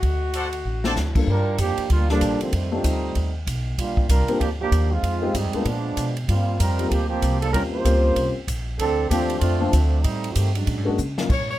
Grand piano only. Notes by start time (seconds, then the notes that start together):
0.84 A3 C4 D4 F#4
1.15 G2 A#3 D4 F4 A4
2.09 G3 A#3 D4 F4 A4
2.72 A3 C4 D#4 F4 G4
4.28 A#3 C4 D4 F4 G4
5.22 G#3 C4 D#4 F4 G4
5.54 G#3 A#3 B3 D4 F4
6.79 G3 A#3 C4 D#4 F4
7.54 G3 A#3 C4 C#4 F4
7.85 G3 A#3 C4 C#4 F4
9.10 F3 A3 C4 D4 F4
9.60 F3 A3 C4 D4 F4
10.85 G#3 A#3 C#4 D4 F#4
11.17 F#3 A#3 C#4 D#4 F4